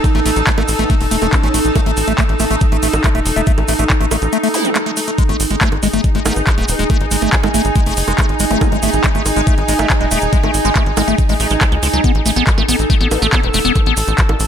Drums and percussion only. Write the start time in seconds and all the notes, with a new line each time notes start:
0.04 kick, closed hi-hat, high bongo, shaker
0.15 closed hi-hat
0.26 open hi-hat, shaker
0.36 closed hi-hat, shaker
0.47 kick, clap, closed hi-hat, shaker
0.58 closed hi-hat, high bongo
0.68 open hi-hat, shaker
0.79 closed hi-hat, shaker
0.90 kick, closed hi-hat, shaker
1.01 open hi-hat
1.11 open hi-hat, shaker
1.22 closed hi-hat, high bongo, shaker
1.33 kick, clap, closed hi-hat, shaker
1.43 closed hi-hat
1.54 open hi-hat, shaker
1.65 closed hi-hat, shaker
1.75 kick, closed hi-hat, high bongo, shaker
1.86 closed hi-hat
1.97 open hi-hat, shaker
2.07 closed hi-hat, shaker
2.18 kick, clap, closed hi-hat, shaker
2.29 closed hi-hat
2.39 open hi-hat, high bongo, shaker
2.51 closed hi-hat, shaker
2.61 kick, closed hi-hat, shaker
2.72 closed hi-hat
2.83 open hi-hat, shaker
2.93 closed hi-hat, high bongo, shaker
3.04 kick, clap, closed hi-hat, shaker
3.15 closed hi-hat
3.26 open hi-hat, shaker
3.36 closed hi-hat, shaker
3.46 kick, closed hi-hat, shaker
3.58 closed hi-hat, high bongo
3.68 open hi-hat, shaker
3.79 closed hi-hat, shaker
3.90 kick, clap, closed hi-hat, shaker
4.01 closed hi-hat
4.11 open hi-hat, high bongo, shaker
4.22 closed hi-hat, shaker
4.32 closed hi-hat, shaker
4.43 open hi-hat
4.54 open hi-hat, shaker
4.65 closed hi-hat, shaker
4.75 clap, closed hi-hat, high bongo, shaker
4.86 closed hi-hat
4.97 open hi-hat, shaker
5.07 closed hi-hat, shaker
5.18 kick, closed hi-hat, shaker
5.29 closed hi-hat
5.40 open hi-hat, shaker
5.50 closed hi-hat, shaker
5.61 kick, clap, closed hi-hat, shaker
5.72 closed hi-hat, high bongo
5.83 open hi-hat, shaker
5.93 closed hi-hat, shaker
6.04 kick, closed hi-hat, shaker
6.15 closed hi-hat
6.26 open hi-hat, high bongo, shaker
6.36 closed hi-hat, shaker
6.47 kick, clap, closed hi-hat, shaker
6.58 closed hi-hat
6.68 open hi-hat, shaker
6.79 closed hi-hat, shaker
6.90 kick, closed hi-hat, high bongo, shaker
7.01 closed hi-hat
7.11 open hi-hat, shaker
7.22 closed hi-hat, shaker
7.33 kick, clap, closed hi-hat, shaker
7.43 closed hi-hat, high bongo
7.54 open hi-hat, shaker
7.65 closed hi-hat, shaker
7.75 kick, closed hi-hat, shaker
7.86 open hi-hat
7.97 open hi-hat, shaker
8.07 closed hi-hat, high bongo, shaker
8.18 kick, clap, closed hi-hat, shaker
8.29 closed hi-hat
8.39 open hi-hat, shaker
8.50 closed hi-hat, shaker
8.61 kick, closed hi-hat, high bongo, shaker
8.72 closed hi-hat
8.83 open hi-hat, shaker
8.93 closed hi-hat, shaker
9.04 kick, clap, closed hi-hat, shaker
9.15 closed hi-hat
9.26 open hi-hat, high bongo, shaker
9.36 closed hi-hat, shaker
9.47 kick, closed hi-hat, shaker
9.58 closed hi-hat
9.68 open hi-hat, shaker
9.79 high bongo, shaker
9.90 kick, clap, closed hi-hat, shaker
10.01 closed hi-hat
10.11 open hi-hat, shaker
10.22 closed hi-hat, shaker
10.33 kick, closed hi-hat, shaker
10.43 closed hi-hat, high bongo
10.54 open hi-hat, shaker
10.65 closed hi-hat, shaker
10.76 kick, clap, closed hi-hat, shaker
10.86 closed hi-hat
10.97 open hi-hat, high bongo, shaker
11.08 closed hi-hat, shaker
11.18 kick, closed hi-hat, shaker
11.29 open hi-hat
11.40 open hi-hat, shaker
11.50 closed hi-hat, shaker
11.61 kick, clap, closed hi-hat, high bongo, shaker
11.72 closed hi-hat
11.83 open hi-hat, shaker
11.94 shaker
12.04 kick, closed hi-hat, shaker
12.15 closed hi-hat
12.26 open hi-hat, shaker
12.36 closed hi-hat, shaker
12.47 kick, clap, closed hi-hat, shaker
12.58 closed hi-hat, high bongo
12.69 open hi-hat, shaker
12.79 closed hi-hat, shaker
12.90 kick, closed hi-hat, shaker
13.01 closed hi-hat
13.11 open hi-hat, high bongo, shaker
13.22 closed hi-hat, shaker
13.33 kick, clap, closed hi-hat, shaker
13.43 closed hi-hat
13.54 open hi-hat, shaker
13.65 closed hi-hat, shaker
13.75 kick, closed hi-hat, high bongo, shaker
13.86 closed hi-hat
13.97 open hi-hat, shaker
14.08 closed hi-hat, shaker
14.18 kick, clap, closed hi-hat, shaker
14.29 closed hi-hat, high bongo
14.40 open hi-hat, shaker